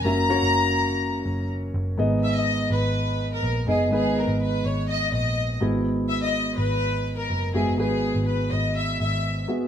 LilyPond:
<<
  \new Staff \with { instrumentName = "Violin section" } { \time 4/4 \key gis \minor \tempo 4 = 124 ais''2. r4 | r8 e''16 dis''8. b'4~ b'16 ais'8. gis'8 | gis'8 ais'8 b'8 cis''8 dis''8 dis''4 r8 | r8 e''16 dis''8. b'4~ b'16 ais'8. gis'8 |
gis'4 b'8 dis''8 e''8 e''4 r8 | }
  \new Staff \with { instrumentName = "Grand piano" } { \time 4/4 \key gis \minor <ais cis' fis' e''>8 <ais cis' fis' cis''>2 r4. | <b dis' gis' dis''>2 r4. <b dis' gis' dis''>8 | <b dis' gis' b'>2 r4. <b e' fis' gis'>8~ | <b e' fis' gis'>4. r2 <b fis' gis' e''>8 |
<b fis' gis' b'>2 r4. <b fis' gis' e''>8 | }
  \new Staff \with { instrumentName = "Grand piano" } { \clef bass \time 4/4 \key gis \minor r1 | gis,4. r2 r8 | gis,4. r2 gis,8~ | gis,4 r2 r8 gis,8~ |
gis,4 r2. | }
  \new Staff \with { instrumentName = "Picked electric bass" } { \clef bass \time 4/4 \key gis \minor fis,,8. fis,,4.~ fis,,16 fis,,4 fis,,8 | gis,,4. gis,,4. ais,,8 fis,,8 | gis,,8. gis,,8. gis,,4 ais,,4 gis,,8~ | gis,,4. gis,,4. fis,,8 fis,,8 |
gis,,8. gis,,8. gis,,4 gis,,4 r8 | }
>>